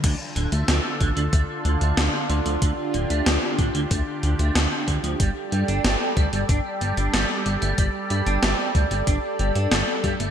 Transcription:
<<
  \new Staff \with { instrumentName = "Analog synth pad" } { \time 4/4 \key d \minor \tempo 4 = 93 << { a'1 | g'1 | d''1~ | d''1 | } \\ { <d d' f'>1~ | <d d' f'>1 | <g a'>1~ | <g a'>1 | } >> }
  \new Staff \with { instrumentName = "Clean electric guitar" } { \clef bass \time 4/4 \key d \minor d16 r16 d16 a16 f16 r16 d16 d16 a16 r16 d16 a16 d16 r16 d16 f16 | d16 r16 d16 a16 f16 r16 d16 d16 a16 r16 d16 a16 d16 r16 d16 f16 | g16 r16 g16 d'16 a16 r16 g16 g16 d'16 r16 g16 d'16 g16 r16 g16 a16 | g16 r16 g16 d'16 a16 r16 g16 g16 d'16 r16 g16 d'16 g16 r16 g16 a16 | }
  \new Staff \with { instrumentName = "Analog synth bass" } { \clef bass \time 4/4 \key d \minor d,16 r16 d,,16 d,16 d,16 r16 a,,16 d,16 d,16 r16 d,16 d,16 d,16 r16 d,16 d,16 | d,16 r16 d,,16 d,16 d,16 r16 a,,16 d,16 d,16 r16 d,16 d,16 d,16 r16 d,16 d,16 | g,,16 r16 g,16 g,,16 g,,16 r16 d,16 g,,16 g,,16 r16 g,,16 g,,16 g,,16 r16 g,,16 g,,16 | g,,16 r16 g,16 g,,16 g,,16 r16 d,16 g,,16 g,,16 r16 g,,16 g,16 g,,16 r16 g,16 g,,16 | }
  \new DrumStaff \with { instrumentName = "Drums" } \drummode { \time 4/4 <cymc hh bd>8 hh16 hh16 <hh sn>8 <hh bd>16 hh16 <hh bd>8 hh16 hh16 <hh sn>8 hh16 hh16 | <hh bd>8 hh16 hh16 <hh sn>8 <hh bd>16 hh16 <hh bd>8 hh16 hh16 <hh sn>8 <hh bd>16 hh16 | <hh bd>8 hh16 hh16 <hh sn>8 <hh bd>16 hh16 <hh bd>8 hh16 hh16 <hh sn>8 hh16 hh16 | <hh bd>8 hh16 hh16 <hh sn>8 <hh bd>16 hh16 <hh bd>8 hh16 hh16 <hh sn>8 <hh bd>16 hh16 | }
>>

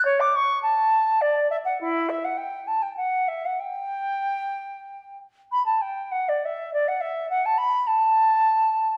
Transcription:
\new Staff \with { instrumentName = "Flute" } { \time 3/4 \key g \major \tempo 4 = 102 cis''16 d'''16 cis'''8 a''4 d''8 e''16 fis''16 | e'8 e''16 fis''16 g''8 a''16 g''16 fis''8 e''16 fis''16 | g''2~ g''8 r8 | b''16 a''16 g''8 fis''16 d''16 e''8 d''16 fis''16 e''8 |
fis''16 a''16 b''8 a''2 | }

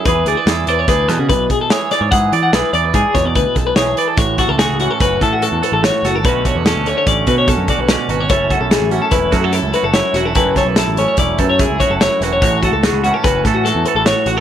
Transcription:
<<
  \new Staff \with { instrumentName = "Clean electric guitar" } { \time 5/4 \key a \major \tempo 4 = 146 b'8 gis'16 b'16 a'8 b'16 cis''16 b'8 a'16 fis'16 b'8 gis'16 a'16 cis''8 d''16 cis''16 | fis''8 d''16 fis''16 b'8 d''16 b'16 gis'8 cis''16 d''16 b'8 a'16 b'16 cis''8 b'16 a'16 | cis''8 fis'16 a'16 gis'8 fis'16 a'16 b'8 a'16 fis'16 a'8 b'16 a'16 cis''8 fis'16 a'16 | b'8 cis''16 b'16 a'8 cis''16 cis''16 d''8 b'16 cis''16 a'8 d''16 b'16 d''8 b'16 cis''16 |
cis''8 fis'16 a'16 gis'8 fis'16 a'16 b'8 a'16 fis'16 a'8 b'16 a'16 cis''8 fis'16 a'16 | b'8 cis''16 b'16 a'8 cis''16 cis''16 d''8 b'16 cis''16 gis'8 cis''16 a'16 cis''8 b'16 cis''16 | cis''8 fis'16 a'16 gis'8 fis'16 a'16 b'8 a'16 fis'16 a'8 b'16 a'16 cis''8 fis'16 a'16 | }
  \new Staff \with { instrumentName = "Clean electric guitar" } { \time 5/4 \key a \major << { gis'8 d''8 gis'8 d''8 gis'2 gis'8 d''8 | gis'8 d''8 gis'8 d''8 gis'2 gis'8 d''8 | fis'8 a'8 fis'8 cis'8 fis'8 a'8 fis'8 a'8 fis'8 a'8 | <d a cis' fis'>8 fis'8 cis'8 a8 cis'8 fis'8 cis'8 fis'8 cis'8 fis'8 |
<a cis' e' a'>8 a'8 e'8 cis'8 e'8 fis'16 a'16 e'8 fis'8 e'8 fis'8 | e'8 a'8 e'8 cis'8 e'8 a'8 e'8 fis'8 e'8 fis'8 | fis'8 a'8 fis'8 cis'8 fis'8 a'8 fis'8 a'8 fis'8 fis'16 r16 | } \\ { e4 e'4. b,4. e4 | e4 e'4. b,4. e4 | a,4. e4 e4. a,4 | b,4. d4 b,4. b,4 |
fis,4. a4 fis,4. fis,4 | fis,4. a4 fis,4. fis,4 | a,4. e4 e4. a,4 | } >> }
  \new Staff \with { instrumentName = "Picked electric bass" } { \clef bass \time 5/4 \key a \major e,8 d,16 r16 e,8 e,8 d,8 e,16 cis16 b,,8 r4 r16 gis,16 | gis,8 e8 b,,16 r16 e,8 gis,16 r16 e,16 e,16 d,16 r16 b,,8 b,,8 r8 | a,,8. cis,8 cis,8 r16 fis,,8 a,8. e,16 r16 a,,8 r16 fis,,8 | b,,8. e,8 d,8 r16 a,,8 b,8. fis,16 r16 b,,8 r16 gis,,8 |
fis,,8. b,,8 a,,8 r16 e,,8 fis,8. cis,16 r16 fis,,8 r16 e,,8 | fis,,8. b,,8 a,,8 r16 e,,8 fis,8. cis,16 r16 fis,,8 r16 e,,8 | a,,8. cis,8 cis,8 r16 fis,,8 a,8. e,16 r16 a,,8 r16 a,,8 | }
  \new DrumStaff \with { instrumentName = "Drums" } \drummode { \time 5/4 <hh bd>8 hh8 <hh sn>8 hh8 <hh bd sn>8 <hh sn>8 <hh bd>8 <hh bd>8 <hh sn>8 <hh sn>8 | <hh bd>8 hh8 <hh sn>8 hh8 <hh bd>8 <hh bd sn>8 <hh bd>8 <hh bd>8 <hh sn>8 hh8 | <hh bd>8 <hh bd sn>8 <hh sn>8 hh8 <hh bd>8 <hh bd>8 hh8 hh8 <hh sn>8 <hh sn>8 | <hh bd>8 <hh bd>8 <hh sn>8 hh8 <hh bd>8 <hh bd>8 <hh bd>8 <hh bd>8 <hh sn>8 hh8 |
<hh bd>8 <hh bd>8 <hh sn>8 hh8 <hh bd sn>8 <hh bd sn>8 hh8 hh8 <hh sn>8 <hh sn>8 | <hh bd>8 <hh bd sn>8 <hh sn>8 hh8 <hh bd>8 <hh bd>8 <hh bd>8 <hh bd>8 <hh sn>8 <hh sn>8 | <hh bd>8 <hh bd>8 <hh sn>8 hh8 <hh bd sn>8 <hh bd sn>8 <hh sn>8 hh8 <hh sn>8 hh8 | }
>>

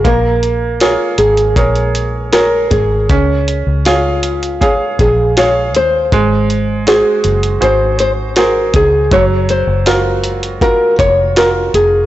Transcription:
<<
  \new Staff \with { instrumentName = "Nylon-string guitar" } { \time 4/4 \key des \major \tempo 4 = 80 bes'4 f'8 aes'4. bes'8 aes'8~ | aes'4 f'4 aes'8 aes'8 des''8 c''8~ | c''4 aes'4 c''8 c''8 bes'8 aes'8 | des''8 c''4. bes'8 des''8 bes'8 aes'8 | }
  \new Staff \with { instrumentName = "Grand piano" } { \time 4/4 \key des \major bes4 <aes' bes' des''>4 <aes' bes' des''>4 <aes' bes' des''>4 | des'4 <aes' des'' f''>4 <aes' des'' f''>4 <aes' f''>4 | aes4 <ges' aes' c''>4 <ges' aes' c''>4 <ges' aes' c''>4 | ges4 <f' ges' bes'>4 <f' ges' bes'>4 <f' ges' bes'>4 | }
  \new Staff \with { instrumentName = "Fingered electric bass" } { \clef bass \time 4/4 \key des \major bes,,4~ bes,,16 r16 aes,,8 bes,,4. aes,,8 | des,8. des,4. r16 bes,,4 ees,8 | aes,,4~ aes,,16 r16 ges,,8 aes,,4. des,8 | ges,,8. ges,,4. r16 f,,4 f,,8 | }
  \new DrumStaff \with { instrumentName = "Drums" } \drummode { \time 4/4 <hh bd>8 hh8 <hh sn>8 hh16 hh16 <hh bd>16 hh16 hh8 <hh sn>8 <hh bd>8 | <hh bd>8 hh8 <hh sn>8 hh16 hh16 <hh bd>8 <hh bd>8 <hh sn>8 hh8 | <hh bd>8 hh8 <hh sn>8 hh16 hh16 hh8 hh8 <hh sn>8 <hh bd>8 | <hh bd>8 hh8 <hh sn>8 hh16 hh16 <hh bd>8 <hh bd>8 <hh sn>8 hh8 | }
>>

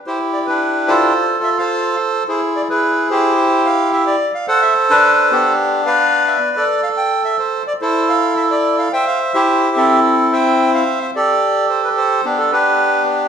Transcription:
\new Staff \with { instrumentName = "Bandoneon" } { \time 4/4 \key c \major \tempo 4 = 108 << { c''8 d''16 b'8. c''4 e''16 f''8. r8 | c''8 d''16 b'8. c''4 f''8 e''16 d''8 f''16 | fis''16 e''8 b'8. g'4 f''8. e''8 d''16~ | d''16 f''16 g''8 e''16 c''8 d''16 c''8 f''8 e''16 d''8 f''16 |
g''16 f''8 c''8. a'4 g''8. f''8 e''16 | d''4 c''16 b'16 c''8 g'16 a'16 b'4 r8 | } \\ { <e' g'>8. <d' e'>8. <f' a'>4~ <f' a'>16 <a' c''>4~ <a' c''>16 | <e' gis'>8. <e' gis'>8. <e' g'>2 r8 | <a' c''>8. d'8. <b d'>4 <b' d''>4~ <b' d''>16 a'16~ | a'4.~ a'16 r16 <e' a'>2 |
<c'' e''>8. <e' g'>8. <c' e'>4 <c'' e''>4. | <g' a'>2 <b d'>8 <d' g'>4. | } >> }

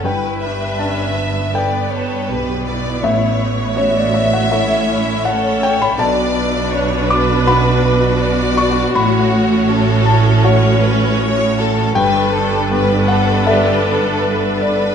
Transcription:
<<
  \new Staff \with { instrumentName = "Felt piano" } { \time 4/4 \key g \lydian \tempo 4 = 80 << { g''4 a''4 g''2 | e''4 cis''16 d''16 e''16 fis''16 e''4 fis''8 g''16 b''16 | a''4. d'''8 b''4. cis'''8 | b''4. a''2 r8 |
g''4. fis''8 e''4. d''8 | } \\ { g,4 d'4 <a' b'>2 | a,,4 cis'4 <a' cis''>2 | b,,4 d'4 <fis' b'>2 | a,4 cis'4 <fis' cis''>2 |
g,4 b4 <a' d''>2 | } >> }
  \new Staff \with { instrumentName = "Violin section" } { \time 4/4 \key g \lydian b'4 e''4 d''8 a'8 b'4 | cis''2 cis''4 a'4 | b'1 | cis''1 |
b'1 | }
  \new Staff \with { instrumentName = "Violin section" } { \time 4/4 \key g \lydian b'8 e''4. d''8 cis''8 b'8 d''8 | cis''4 e''2 cis''4 | d''4 cis''8 b'4. d''4 | fis'4 a'4 cis''8 b'8 cis''8 a'8 |
b'8 a'8 b'8 a'8 g'8 a'8 b'4 | }
  \new Staff \with { instrumentName = "Viola section" } { \time 4/4 \key g \lydian << { b'2 b'4 g'8 e'8~ | e'4 fis'4 e'8 e'8 a'4 | fis'1~ | fis'1 |
a'1 | } \\ { e'8 d'8 cis'8 b4. b4~ | b2 cis'4 cis'4 | d'1 | cis'1 |
d'1 | } >> }
  \new Staff \with { instrumentName = "Cello section" } { \clef bass \time 4/4 \key g \lydian g,2. b,4 | a,1 | b,1 | a,1 |
g,1 | }
  \new Staff \with { instrumentName = "Double bass section" } { \clef bass \time 4/4 \key g \lydian g,,2. b,,4 | a,,1 | b,,1 | a,,1 |
g,,1 | }
>>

